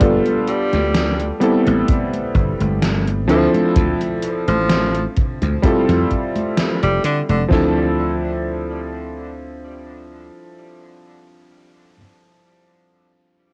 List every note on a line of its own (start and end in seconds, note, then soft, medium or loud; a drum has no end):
0.00 0.18 G1 loud
0.00 1.32 G3 medium
0.00 1.32 B3 medium
0.00 1.33 D4 medium
0.00 1.33 F4 medium
0.00 1.34 A4 medium
0.00 kick loud
0.00 closed hi-hat medium
0.00 high conga soft
0.26 closed hi-hat soft
0.26 high conga soft
0.47 1.42 G3 loud
0.47 closed hi-hat medium
0.73 1.31 D2 medium
0.73 snare soft
0.73 closed hi-hat soft
0.73 high conga medium
0.94 snare loud
0.94 closed hi-hat medium
0.94 high conga medium
1.20 closed hi-hat soft
1.20 high conga soft
1.40 3.20 G3 medium
1.40 3.20 B3 medium
1.40 3.20 C4 medium
1.40 3.21 E4 medium
1.40 3.21 A4 medium
1.40 closed hi-hat medium
1.67 1.82 A1 medium
1.67 closed hi-hat soft
1.67 high conga medium
1.88 kick loud
1.88 closed hi-hat medium
1.88 high conga soft
2.13 closed hi-hat soft
2.13 high conga soft
2.35 2.52 G1 loud
2.35 kick loud
2.35 closed hi-hat soft
2.60 3.29 G1 medium
2.60 closed hi-hat soft
2.60 high conga medium
2.82 snare loud
2.82 closed hi-hat medium
2.82 high conga soft
3.07 closed hi-hat soft
3.07 high conga soft
3.28 3.46 D2 loud
3.28 5.54 F3 medium
3.28 3.49 F3 medium
3.28 5.54 C4 medium
3.28 5.55 D4 medium
3.28 5.55 E4 medium
3.28 5.55 A4 loud
3.28 closed hi-hat medium
3.54 closed hi-hat soft
3.54 high conga medium
3.76 3.93 D2 loud
3.76 kick loud
3.76 closed hi-hat loud
3.76 high conga soft
4.01 closed hi-hat soft
4.01 high conga soft
4.22 closed hi-hat medium
4.48 5.05 A1 loud
4.48 5.04 F3 loud
4.48 closed hi-hat soft
4.48 high conga medium
4.69 snare loud
4.69 closed hi-hat loud
4.69 high conga medium
4.95 closed hi-hat soft
4.95 high conga soft
5.17 kick loud
5.17 closed hi-hat medium
5.42 5.57 D2 medium
5.42 closed hi-hat soft
5.42 high conga medium
5.62 7.42 G3 medium
5.62 7.42 C4 medium
5.62 7.42 E4 medium
5.62 7.43 F4 medium
5.62 7.43 A4 medium
5.62 kick loud
5.62 closed hi-hat loud
5.62 high conga medium
5.89 6.03 F2 loud
5.89 snare soft
5.89 closed hi-hat soft
5.89 high conga soft
6.11 kick medium
6.11 closed hi-hat soft
6.35 closed hi-hat soft
6.35 high conga medium
6.57 snare loud
6.57 closed hi-hat loud
6.57 high conga soft
6.83 6.97 F1 medium
6.83 7.00 G3 medium
6.83 closed hi-hat soft
6.83 high conga soft
7.04 7.21 D3 loud
7.04 7.20 D3 medium
7.04 closed hi-hat medium
7.29 7.44 F1 medium
7.29 7.43 D3 medium
7.29 closed hi-hat soft
7.29 high conga medium
7.48 10.28 D2 loud
7.48 11.93 F3 medium
7.48 11.94 C4 medium
7.48 11.95 D4 medium
7.48 11.96 E4 medium
7.48 kick loud
7.48 snare loud
7.48 china medium
7.53 11.97 A4 medium